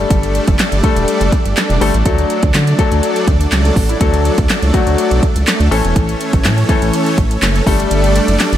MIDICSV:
0, 0, Header, 1, 5, 480
1, 0, Start_track
1, 0, Tempo, 487805
1, 103, Time_signature, 4, 2, 24, 8
1, 8439, End_track
2, 0, Start_track
2, 0, Title_t, "Supersaw synth"
2, 0, Program_c, 0, 81
2, 0, Note_on_c, 0, 55, 83
2, 0, Note_on_c, 0, 57, 76
2, 0, Note_on_c, 0, 62, 76
2, 0, Note_on_c, 0, 69, 78
2, 0, Note_on_c, 0, 74, 92
2, 2002, Note_off_c, 0, 55, 0
2, 2002, Note_off_c, 0, 57, 0
2, 2003, Note_off_c, 0, 69, 0
2, 2003, Note_off_c, 0, 74, 0
2, 2022, Note_on_c, 0, 54, 85
2, 2023, Note_on_c, 0, 57, 76
2, 2023, Note_on_c, 0, 69, 76
2, 2023, Note_on_c, 0, 74, 91
2, 5584, Note_off_c, 0, 62, 0
2, 5587, Note_off_c, 0, 54, 0
2, 5587, Note_off_c, 0, 69, 0
2, 5587, Note_off_c, 0, 74, 0
2, 5624, Note_on_c, 0, 61, 77
2, 5625, Note_on_c, 0, 52, 80
2, 5625, Note_on_c, 0, 69, 76
2, 5625, Note_on_c, 0, 73, 92
2, 7504, Note_off_c, 0, 57, 0
2, 7525, Note_off_c, 0, 52, 0
2, 7525, Note_off_c, 0, 61, 0
2, 7525, Note_off_c, 0, 73, 0
2, 7544, Note_on_c, 0, 57, 73
2, 7544, Note_on_c, 0, 74, 87
2, 7545, Note_on_c, 0, 55, 80
2, 7546, Note_on_c, 0, 62, 74
2, 8439, Note_off_c, 0, 55, 0
2, 8439, Note_off_c, 0, 57, 0
2, 8439, Note_off_c, 0, 62, 0
2, 8439, Note_off_c, 0, 69, 0
2, 8439, Note_off_c, 0, 74, 0
2, 8439, End_track
3, 0, Start_track
3, 0, Title_t, "Grand piano"
3, 0, Program_c, 1, 0
3, 0, Note_on_c, 1, 55, 94
3, 0, Note_on_c, 1, 57, 86
3, 0, Note_on_c, 1, 62, 89
3, 0, Note_on_c, 1, 69, 103
3, 633, Note_off_c, 1, 55, 0
3, 634, Note_off_c, 1, 57, 0
3, 634, Note_off_c, 1, 62, 0
3, 635, Note_off_c, 1, 69, 0
3, 821, Note_on_c, 1, 55, 87
3, 823, Note_on_c, 1, 57, 81
3, 823, Note_on_c, 1, 62, 76
3, 825, Note_on_c, 1, 69, 95
3, 1282, Note_off_c, 1, 55, 0
3, 1283, Note_off_c, 1, 57, 0
3, 1283, Note_off_c, 1, 62, 0
3, 1284, Note_off_c, 1, 69, 0
3, 1781, Note_on_c, 1, 55, 87
3, 1783, Note_on_c, 1, 57, 83
3, 1785, Note_on_c, 1, 62, 81
3, 1786, Note_on_c, 1, 69, 95
3, 1904, Note_off_c, 1, 55, 0
3, 1905, Note_off_c, 1, 57, 0
3, 1905, Note_off_c, 1, 62, 0
3, 1906, Note_off_c, 1, 69, 0
3, 2021, Note_on_c, 1, 54, 87
3, 2024, Note_on_c, 1, 57, 76
3, 2025, Note_on_c, 1, 62, 79
3, 2027, Note_on_c, 1, 69, 94
3, 2372, Note_off_c, 1, 54, 0
3, 2374, Note_off_c, 1, 57, 0
3, 2374, Note_off_c, 1, 62, 0
3, 2375, Note_off_c, 1, 69, 0
3, 2742, Note_on_c, 1, 54, 86
3, 2743, Note_on_c, 1, 57, 80
3, 2746, Note_on_c, 1, 62, 78
3, 2747, Note_on_c, 1, 69, 96
3, 3202, Note_off_c, 1, 54, 0
3, 3203, Note_off_c, 1, 57, 0
3, 3204, Note_off_c, 1, 62, 0
3, 3205, Note_off_c, 1, 69, 0
3, 3827, Note_on_c, 1, 62, 50
3, 3833, Note_on_c, 1, 64, 57
3, 3883, Note_off_c, 1, 62, 0
3, 3885, Note_off_c, 1, 64, 0
3, 3942, Note_on_c, 1, 54, 86
3, 3944, Note_on_c, 1, 57, 77
3, 3946, Note_on_c, 1, 62, 79
3, 3946, Note_on_c, 1, 69, 95
3, 4292, Note_off_c, 1, 54, 0
3, 4294, Note_off_c, 1, 57, 0
3, 4295, Note_off_c, 1, 62, 0
3, 4295, Note_off_c, 1, 69, 0
3, 4661, Note_on_c, 1, 54, 85
3, 4661, Note_on_c, 1, 57, 83
3, 4664, Note_on_c, 1, 62, 80
3, 4665, Note_on_c, 1, 66, 96
3, 5122, Note_off_c, 1, 54, 0
3, 5122, Note_off_c, 1, 57, 0
3, 5123, Note_off_c, 1, 62, 0
3, 5124, Note_off_c, 1, 66, 0
3, 5621, Note_on_c, 1, 52, 93
3, 5624, Note_on_c, 1, 57, 86
3, 5625, Note_on_c, 1, 61, 85
3, 5626, Note_on_c, 1, 69, 101
3, 6393, Note_off_c, 1, 52, 0
3, 6394, Note_off_c, 1, 57, 0
3, 6395, Note_off_c, 1, 61, 0
3, 6395, Note_off_c, 1, 69, 0
3, 6581, Note_on_c, 1, 52, 90
3, 6581, Note_on_c, 1, 57, 81
3, 6583, Note_on_c, 1, 61, 82
3, 6585, Note_on_c, 1, 69, 98
3, 7042, Note_off_c, 1, 52, 0
3, 7042, Note_off_c, 1, 57, 0
3, 7043, Note_off_c, 1, 61, 0
3, 7044, Note_off_c, 1, 69, 0
3, 7542, Note_on_c, 1, 55, 93
3, 7544, Note_on_c, 1, 57, 91
3, 7545, Note_on_c, 1, 62, 89
3, 7547, Note_on_c, 1, 69, 106
3, 8314, Note_off_c, 1, 55, 0
3, 8314, Note_off_c, 1, 57, 0
3, 8315, Note_off_c, 1, 62, 0
3, 8316, Note_off_c, 1, 69, 0
3, 8439, End_track
4, 0, Start_track
4, 0, Title_t, "Analog synth bass"
4, 0, Program_c, 2, 38
4, 103, Note_on_c, 2, 31, 105
4, 393, Note_off_c, 2, 31, 0
4, 470, Note_on_c, 2, 30, 88
4, 559, Note_off_c, 2, 30, 0
4, 710, Note_on_c, 2, 31, 93
4, 799, Note_off_c, 2, 31, 0
4, 949, Note_on_c, 2, 28, 98
4, 1039, Note_off_c, 2, 28, 0
4, 1189, Note_on_c, 2, 30, 84
4, 1279, Note_off_c, 2, 30, 0
4, 1428, Note_on_c, 2, 31, 85
4, 1518, Note_off_c, 2, 31, 0
4, 1670, Note_on_c, 2, 28, 90
4, 1759, Note_off_c, 2, 28, 0
4, 1784, Note_on_c, 2, 31, 90
4, 1884, Note_off_c, 2, 31, 0
4, 1911, Note_on_c, 2, 33, 94
4, 2000, Note_off_c, 2, 33, 0
4, 2023, Note_on_c, 2, 38, 106
4, 2213, Note_off_c, 2, 38, 0
4, 2391, Note_on_c, 2, 38, 94
4, 2480, Note_off_c, 2, 38, 0
4, 2505, Note_on_c, 2, 50, 99
4, 2694, Note_off_c, 2, 50, 0
4, 2871, Note_on_c, 2, 38, 93
4, 2960, Note_off_c, 2, 38, 0
4, 3223, Note_on_c, 2, 38, 92
4, 3412, Note_off_c, 2, 38, 0
4, 3464, Note_on_c, 2, 37, 97
4, 3653, Note_off_c, 2, 37, 0
4, 3702, Note_on_c, 2, 33, 86
4, 3892, Note_off_c, 2, 33, 0
4, 3944, Note_on_c, 2, 38, 118
4, 4234, Note_off_c, 2, 38, 0
4, 4311, Note_on_c, 2, 38, 95
4, 4400, Note_off_c, 2, 38, 0
4, 4551, Note_on_c, 2, 37, 90
4, 4640, Note_off_c, 2, 37, 0
4, 4792, Note_on_c, 2, 38, 90
4, 4880, Note_off_c, 2, 38, 0
4, 5032, Note_on_c, 2, 35, 81
4, 5120, Note_off_c, 2, 35, 0
4, 5272, Note_on_c, 2, 37, 89
4, 5361, Note_off_c, 2, 37, 0
4, 5511, Note_on_c, 2, 38, 84
4, 5600, Note_off_c, 2, 38, 0
4, 5623, Note_on_c, 2, 33, 102
4, 5724, Note_off_c, 2, 33, 0
4, 5751, Note_on_c, 2, 28, 98
4, 5840, Note_off_c, 2, 28, 0
4, 5865, Note_on_c, 2, 33, 116
4, 6054, Note_off_c, 2, 33, 0
4, 6232, Note_on_c, 2, 33, 95
4, 6345, Note_on_c, 2, 45, 106
4, 6359, Note_off_c, 2, 33, 0
4, 6534, Note_off_c, 2, 45, 0
4, 6710, Note_on_c, 2, 33, 88
4, 6799, Note_off_c, 2, 33, 0
4, 7063, Note_on_c, 2, 33, 99
4, 7253, Note_off_c, 2, 33, 0
4, 7302, Note_on_c, 2, 30, 104
4, 7492, Note_off_c, 2, 30, 0
4, 7543, Note_on_c, 2, 31, 106
4, 7732, Note_off_c, 2, 31, 0
4, 7782, Note_on_c, 2, 31, 105
4, 8072, Note_off_c, 2, 31, 0
4, 8149, Note_on_c, 2, 30, 81
4, 8239, Note_off_c, 2, 30, 0
4, 8390, Note_on_c, 2, 31, 95
4, 8439, Note_off_c, 2, 31, 0
4, 8439, End_track
5, 0, Start_track
5, 0, Title_t, "Drums"
5, 103, Note_on_c, 9, 36, 118
5, 104, Note_on_c, 9, 42, 106
5, 201, Note_off_c, 9, 36, 0
5, 202, Note_off_c, 9, 42, 0
5, 230, Note_on_c, 9, 42, 55
5, 328, Note_off_c, 9, 42, 0
5, 344, Note_on_c, 9, 42, 62
5, 442, Note_off_c, 9, 42, 0
5, 467, Note_on_c, 9, 42, 69
5, 470, Note_on_c, 9, 36, 106
5, 566, Note_off_c, 9, 42, 0
5, 569, Note_off_c, 9, 36, 0
5, 582, Note_on_c, 9, 39, 124
5, 583, Note_on_c, 9, 42, 95
5, 590, Note_on_c, 9, 38, 104
5, 680, Note_off_c, 9, 39, 0
5, 681, Note_off_c, 9, 42, 0
5, 688, Note_off_c, 9, 38, 0
5, 709, Note_on_c, 9, 42, 47
5, 808, Note_off_c, 9, 42, 0
5, 822, Note_on_c, 9, 36, 98
5, 823, Note_on_c, 9, 42, 72
5, 920, Note_off_c, 9, 36, 0
5, 921, Note_off_c, 9, 42, 0
5, 949, Note_on_c, 9, 42, 52
5, 1048, Note_off_c, 9, 42, 0
5, 1062, Note_on_c, 9, 42, 92
5, 1161, Note_off_c, 9, 42, 0
5, 1190, Note_on_c, 9, 42, 48
5, 1289, Note_off_c, 9, 42, 0
5, 1302, Note_on_c, 9, 36, 94
5, 1303, Note_on_c, 9, 42, 68
5, 1401, Note_off_c, 9, 36, 0
5, 1402, Note_off_c, 9, 42, 0
5, 1432, Note_on_c, 9, 42, 61
5, 1530, Note_off_c, 9, 42, 0
5, 1545, Note_on_c, 9, 39, 110
5, 1546, Note_on_c, 9, 42, 97
5, 1553, Note_on_c, 9, 38, 88
5, 1643, Note_off_c, 9, 39, 0
5, 1644, Note_off_c, 9, 42, 0
5, 1651, Note_off_c, 9, 38, 0
5, 1674, Note_on_c, 9, 42, 49
5, 1772, Note_off_c, 9, 42, 0
5, 1785, Note_on_c, 9, 46, 66
5, 1884, Note_off_c, 9, 46, 0
5, 1912, Note_on_c, 9, 42, 53
5, 2011, Note_off_c, 9, 42, 0
5, 2023, Note_on_c, 9, 36, 119
5, 2023, Note_on_c, 9, 42, 106
5, 2121, Note_off_c, 9, 42, 0
5, 2122, Note_off_c, 9, 36, 0
5, 2149, Note_on_c, 9, 42, 57
5, 2248, Note_off_c, 9, 42, 0
5, 2263, Note_on_c, 9, 42, 63
5, 2362, Note_off_c, 9, 42, 0
5, 2388, Note_on_c, 9, 42, 68
5, 2391, Note_on_c, 9, 36, 104
5, 2486, Note_off_c, 9, 42, 0
5, 2489, Note_off_c, 9, 36, 0
5, 2502, Note_on_c, 9, 39, 118
5, 2503, Note_on_c, 9, 42, 96
5, 2510, Note_on_c, 9, 38, 102
5, 2600, Note_off_c, 9, 39, 0
5, 2601, Note_off_c, 9, 42, 0
5, 2608, Note_off_c, 9, 38, 0
5, 2630, Note_on_c, 9, 42, 47
5, 2729, Note_off_c, 9, 42, 0
5, 2743, Note_on_c, 9, 36, 100
5, 2743, Note_on_c, 9, 42, 76
5, 2841, Note_off_c, 9, 36, 0
5, 2842, Note_off_c, 9, 42, 0
5, 2870, Note_on_c, 9, 42, 50
5, 2968, Note_off_c, 9, 42, 0
5, 2983, Note_on_c, 9, 42, 94
5, 3081, Note_off_c, 9, 42, 0
5, 3110, Note_on_c, 9, 42, 47
5, 3209, Note_off_c, 9, 42, 0
5, 3223, Note_on_c, 9, 36, 92
5, 3223, Note_on_c, 9, 42, 70
5, 3321, Note_off_c, 9, 36, 0
5, 3321, Note_off_c, 9, 42, 0
5, 3352, Note_on_c, 9, 42, 60
5, 3450, Note_off_c, 9, 42, 0
5, 3464, Note_on_c, 9, 39, 109
5, 3465, Note_on_c, 9, 42, 96
5, 3472, Note_on_c, 9, 38, 89
5, 3562, Note_off_c, 9, 39, 0
5, 3563, Note_off_c, 9, 42, 0
5, 3571, Note_off_c, 9, 38, 0
5, 3593, Note_on_c, 9, 42, 49
5, 3692, Note_off_c, 9, 42, 0
5, 3702, Note_on_c, 9, 36, 92
5, 3705, Note_on_c, 9, 46, 65
5, 3800, Note_off_c, 9, 36, 0
5, 3803, Note_off_c, 9, 46, 0
5, 3831, Note_on_c, 9, 42, 52
5, 3930, Note_off_c, 9, 42, 0
5, 3943, Note_on_c, 9, 42, 107
5, 3944, Note_on_c, 9, 36, 118
5, 4041, Note_off_c, 9, 42, 0
5, 4042, Note_off_c, 9, 36, 0
5, 4070, Note_on_c, 9, 42, 58
5, 4168, Note_off_c, 9, 42, 0
5, 4185, Note_on_c, 9, 42, 64
5, 4283, Note_off_c, 9, 42, 0
5, 4309, Note_on_c, 9, 42, 69
5, 4311, Note_on_c, 9, 36, 109
5, 4407, Note_off_c, 9, 42, 0
5, 4410, Note_off_c, 9, 36, 0
5, 4423, Note_on_c, 9, 39, 120
5, 4424, Note_on_c, 9, 42, 98
5, 4431, Note_on_c, 9, 38, 103
5, 4521, Note_off_c, 9, 39, 0
5, 4522, Note_off_c, 9, 42, 0
5, 4529, Note_off_c, 9, 38, 0
5, 4551, Note_on_c, 9, 42, 45
5, 4649, Note_off_c, 9, 42, 0
5, 4663, Note_on_c, 9, 36, 100
5, 4664, Note_on_c, 9, 42, 73
5, 4761, Note_off_c, 9, 36, 0
5, 4763, Note_off_c, 9, 42, 0
5, 4791, Note_on_c, 9, 42, 50
5, 4889, Note_off_c, 9, 42, 0
5, 4904, Note_on_c, 9, 42, 93
5, 5002, Note_off_c, 9, 42, 0
5, 5031, Note_on_c, 9, 42, 47
5, 5130, Note_off_c, 9, 42, 0
5, 5143, Note_on_c, 9, 36, 97
5, 5145, Note_on_c, 9, 42, 68
5, 5241, Note_off_c, 9, 36, 0
5, 5243, Note_off_c, 9, 42, 0
5, 5272, Note_on_c, 9, 42, 58
5, 5371, Note_off_c, 9, 42, 0
5, 5385, Note_on_c, 9, 39, 116
5, 5386, Note_on_c, 9, 42, 95
5, 5393, Note_on_c, 9, 38, 89
5, 5483, Note_off_c, 9, 39, 0
5, 5484, Note_off_c, 9, 42, 0
5, 5491, Note_off_c, 9, 38, 0
5, 5516, Note_on_c, 9, 42, 48
5, 5614, Note_off_c, 9, 42, 0
5, 5628, Note_on_c, 9, 46, 68
5, 5726, Note_off_c, 9, 46, 0
5, 5753, Note_on_c, 9, 42, 53
5, 5851, Note_off_c, 9, 42, 0
5, 5864, Note_on_c, 9, 36, 115
5, 5864, Note_on_c, 9, 42, 106
5, 5962, Note_off_c, 9, 42, 0
5, 5963, Note_off_c, 9, 36, 0
5, 5992, Note_on_c, 9, 42, 59
5, 6090, Note_off_c, 9, 42, 0
5, 6107, Note_on_c, 9, 42, 62
5, 6205, Note_off_c, 9, 42, 0
5, 6230, Note_on_c, 9, 42, 66
5, 6232, Note_on_c, 9, 36, 104
5, 6329, Note_off_c, 9, 42, 0
5, 6330, Note_off_c, 9, 36, 0
5, 6343, Note_on_c, 9, 39, 127
5, 6344, Note_on_c, 9, 42, 92
5, 6351, Note_on_c, 9, 38, 104
5, 6441, Note_off_c, 9, 39, 0
5, 6443, Note_off_c, 9, 42, 0
5, 6450, Note_off_c, 9, 38, 0
5, 6472, Note_on_c, 9, 42, 45
5, 6570, Note_off_c, 9, 42, 0
5, 6583, Note_on_c, 9, 36, 105
5, 6585, Note_on_c, 9, 42, 75
5, 6681, Note_off_c, 9, 36, 0
5, 6683, Note_off_c, 9, 42, 0
5, 6711, Note_on_c, 9, 42, 52
5, 6810, Note_off_c, 9, 42, 0
5, 6824, Note_on_c, 9, 42, 91
5, 6922, Note_off_c, 9, 42, 0
5, 6951, Note_on_c, 9, 42, 48
5, 7049, Note_off_c, 9, 42, 0
5, 7063, Note_on_c, 9, 36, 97
5, 7064, Note_on_c, 9, 42, 68
5, 7161, Note_off_c, 9, 36, 0
5, 7162, Note_off_c, 9, 42, 0
5, 7193, Note_on_c, 9, 42, 60
5, 7291, Note_off_c, 9, 42, 0
5, 7305, Note_on_c, 9, 39, 109
5, 7306, Note_on_c, 9, 42, 98
5, 7313, Note_on_c, 9, 38, 92
5, 7403, Note_off_c, 9, 39, 0
5, 7404, Note_off_c, 9, 42, 0
5, 7411, Note_off_c, 9, 38, 0
5, 7435, Note_on_c, 9, 42, 48
5, 7533, Note_off_c, 9, 42, 0
5, 7542, Note_on_c, 9, 36, 89
5, 7547, Note_on_c, 9, 46, 70
5, 7641, Note_off_c, 9, 36, 0
5, 7646, Note_off_c, 9, 46, 0
5, 7673, Note_on_c, 9, 42, 52
5, 7771, Note_off_c, 9, 42, 0
5, 7784, Note_on_c, 9, 42, 106
5, 7883, Note_off_c, 9, 42, 0
5, 7910, Note_on_c, 9, 42, 56
5, 8009, Note_off_c, 9, 42, 0
5, 8025, Note_on_c, 9, 42, 63
5, 8123, Note_off_c, 9, 42, 0
5, 8149, Note_on_c, 9, 42, 67
5, 8248, Note_off_c, 9, 42, 0
5, 8263, Note_on_c, 9, 39, 124
5, 8264, Note_on_c, 9, 42, 95
5, 8271, Note_on_c, 9, 38, 100
5, 8361, Note_off_c, 9, 39, 0
5, 8362, Note_off_c, 9, 42, 0
5, 8369, Note_off_c, 9, 38, 0
5, 8390, Note_on_c, 9, 42, 45
5, 8439, Note_off_c, 9, 42, 0
5, 8439, End_track
0, 0, End_of_file